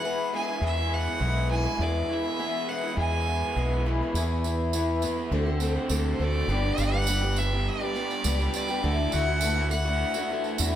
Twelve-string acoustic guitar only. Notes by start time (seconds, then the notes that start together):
0.04 E3 B3 E4 G#4
0.32 E3 B3 E4 G#4
0.47 B3 E4 G#4
0.77 B3 E4 G#4
1.19 E3 B3 E4 G#4
1.49 E3 B3 E4 G#4
1.65 B3 E4 G#4
1.80 E3 B3 E4 G#4
2.23 B3 E4 G#4
2.38 E3 B3 E4 G#4
2.67 E3 B3 E4 G#4
2.83 B3 E4 G#4
3.12 B3 E4 G#4
3.56 E3 B3 E4 G#4
3.85 E3 B3 E4 G#4
4.01 B3 E4 G#4
4.16 E3 B3 E4 G#4
4.45 E3 B3 E4 G#4
4.73 E3 B3 E4 G#4
5.02 E3 B3 E4 G#4
5.16 B3 E4 G#4
5.32 D3 A3 C4 F#4 A4
5.46 C4 F#4 A4
5.60 A3 C4 F#4 A4
5.75 C4 F#4 A4
5.89 D3 A3 C4 F#4 A4
6.19 A3 C4 F#4 A4
6.48 G2 D3 G3 B3 D4 G4
6.92 G3 B3 D4 G4
7.07 G2 D3 G3 B3 D4 G4
7.22 G3 B3 D4 G4
7.38 B3 D4 G4
7.80 G3 B3 D4 G4
7.95 G3 B3 D4 G4
8.25 G2 D3 G3 B3 D4 G4
8.39 G3 B3 D4 G4
8.69 G3 B3 D4 G4
8.83 D3 E3 A3 E4 F#4
9.27 A3 E4 F#4
9.43 D3 E3 A3 E4 F#4
9.57 A3 E4 F#4
9.71 E3 A3 E4 F#4
10.14 A3 E4 F#4
10.30 E3 A3 E4 F#4
10.59 D3 E3 A3 E4 F#4